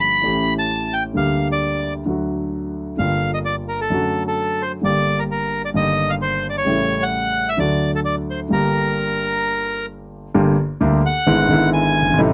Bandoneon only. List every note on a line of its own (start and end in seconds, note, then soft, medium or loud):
0.00 0.54 B5 loud
0.59 0.94 A5 medium
0.93 1.03 G5 medium
1.17 1.48 F5 medium
1.52 1.94 D5 medium
2.99 3.31 F5 medium
3.34 3.39 D#5 medium
3.45 3.56 D5 medium
3.69 3.80 A#4 medium
3.81 4.23 A4 medium
4.28 4.62 A4 medium
4.62 4.72 C5 medium
4.85 5.19 D5 medium
5.19 5.24 A#4 medium
5.31 5.62 A#4 medium
5.65 5.70 D5 medium
5.76 6.11 D#5 medium
6.10 6.15 F5 medium
6.22 6.47 C5 medium
6.50 6.56 D5 medium
6.58 7.04 C#5 medium
7.03 7.49 F#5 loud
7.49 7.59 E5 medium
7.59 7.91 D5 medium
7.95 8.00 A4 medium
8.05 8.15 D5 medium
8.30 8.40 C5 medium
8.53 9.86 A#4 medium
11.06 11.70 F#5 loud
11.74 12.20 G#5 loud